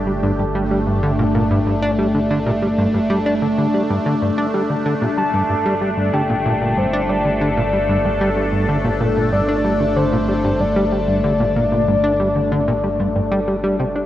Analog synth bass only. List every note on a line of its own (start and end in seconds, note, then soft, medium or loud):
0.07 0.12 G3 medium
0.23 0.32 G2 loud
0.39 0.44 G2 medium
0.55 0.64 G3 loud
0.71 0.80 G3 medium
0.87 1.00 G2 medium
1.03 1.12 D3 loud
1.19 1.24 A#2 loud
1.35 1.43 A#2 loud
1.51 1.59 G2 loud
1.67 1.75 G2 medium
1.83 1.91 D4 loud
1.99 2.07 G3 medium
2.15 2.20 D3 medium
2.30 2.39 D3 loud
2.46 2.52 A#2 loud
2.62 2.68 G3 medium
2.78 2.87 G2 loud
2.94 3.00 G2 medium
3.10 3.19 G3 loud
3.26 3.35 D4 loud
3.42 3.47 D3 medium
3.58 3.67 D3 medium
3.74 3.83 G3 medium
3.90 3.99 G2 loud
4.06 4.15 D3 loud
4.22 4.31 G2 medium
4.38 4.47 D4 loud
4.54 4.63 G3 medium
4.70 4.75 D3 medium
4.86 4.95 D3 loud
5.02 5.07 A#2 loud
5.18 5.23 G3 medium
5.34 5.42 G2 loud
5.50 5.55 G2 medium
5.66 5.74 G3 loud
5.82 5.90 G3 medium
5.97 6.11 G2 medium
6.13 6.22 D3 loud
6.29 6.35 A#2 loud
6.45 6.54 A#2 loud
6.61 6.75 A#2 medium
6.77 6.86 G2 medium
6.93 7.02 D4 loud
7.09 7.18 G3 medium
7.25 7.30 D3 medium
7.41 7.50 D3 loud
7.57 7.62 A#2 loud
7.73 7.78 G3 medium
7.89 7.98 G2 loud
8.05 8.10 G2 medium
8.21 8.30 G3 loud
8.37 8.46 G3 medium
8.53 8.66 G2 medium
8.69 8.78 D3 loud
8.84 8.90 A#2 loud
9.01 9.09 A#2 loud
9.16 9.30 A#2 medium
9.32 9.41 G2 medium
9.49 9.57 D4 loud
9.65 9.73 G3 medium
9.80 9.86 D3 medium
9.96 10.05 D3 loud
10.12 10.18 A#2 loud
10.28 10.34 G3 medium
10.44 10.53 G2 loud
10.60 10.65 G2 medium
10.76 10.85 G3 loud
10.92 11.01 G3 medium
11.08 11.21 G2 medium
11.24 11.33 D3 loud
11.40 11.45 A#2 loud
11.56 11.65 A#2 loud
11.72 11.85 A#2 medium
11.88 11.97 G2 medium
12.04 12.13 D4 loud
12.20 12.29 G3 medium
12.36 12.41 D3 medium
12.52 12.61 D3 loud
12.68 12.73 A#2 loud
12.84 12.89 G3 medium
13.00 13.08 G2 loud
13.16 13.21 G2 medium
13.32 13.40 G3 loud
13.48 13.56 G3 medium
13.64 13.77 G3 loud
13.80 13.85 C3 medium
13.96 14.06 D4 medium